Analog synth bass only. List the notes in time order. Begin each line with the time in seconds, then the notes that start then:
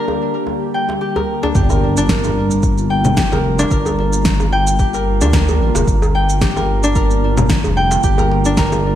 1.55 G1
3.32 F1
3.71 G1
5.21 D2
5.60 A1
5.75 F1
5.87 G1
7.65 F1
8.04 G1